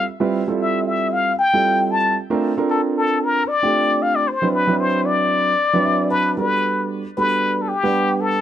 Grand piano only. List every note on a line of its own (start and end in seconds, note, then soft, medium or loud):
0.20 0.40 G3 medium
0.20 0.41 C4 medium
0.20 0.40 E4 medium
0.20 0.41 F4 medium
0.20 0.41 B4 medium
0.48 1.30 G3 medium
0.48 1.30 C4 medium
0.48 1.30 E4 medium
0.48 1.30 F4 medium
0.48 1.30 A4 medium
1.53 2.14 G3 medium
1.53 2.14 C4 medium
1.53 2.14 E4 medium
1.53 2.14 F4 medium
1.53 2.14 A4 medium
2.30 2.51 A3 medium
2.30 2.51 C4 medium
2.30 2.51 D4 medium
2.30 2.51 F4 medium
2.30 2.51 A#4 medium
2.57 3.40 C4 medium
2.57 3.40 D4 medium
2.57 3.40 F4 medium
2.57 3.40 A4 medium
2.57 3.40 A#4 loud
3.63 4.24 A3 medium
3.63 4.24 C4 medium
3.63 4.24 D4 medium
3.63 4.24 F4 medium
3.63 4.24 G4 medium
4.42 4.62 F#3 medium
4.42 4.62 C4 medium
4.42 4.62 D4 medium
4.42 4.62 E4 medium
4.42 4.62 B4 medium
4.67 5.50 F#3 medium
4.67 5.50 C4 medium
4.67 5.50 D4 medium
4.67 5.50 E4 medium
4.67 5.51 B4 medium
5.73 6.35 F#3 medium
5.73 6.35 C4 medium
5.73 6.35 D4 medium
5.73 6.35 E4 medium
5.73 6.35 B4 medium
5.85 6.09 E5 medium
6.11 6.35 A5 medium
6.37 7.01 G3 medium
6.37 7.01 B3 medium
6.37 7.01 D4 medium
6.37 7.01 F#4 soft
6.37 7.01 A4 medium
7.18 7.69 G3 medium
7.18 7.69 B3 medium
7.18 7.69 D4 soft
7.18 7.69 F#4 soft
7.18 7.69 A4 medium
7.83 8.35 G3 medium
7.83 8.35 B3 medium
7.83 8.35 D4 medium
7.83 8.35 B4 medium
7.83 8.35 F#5 medium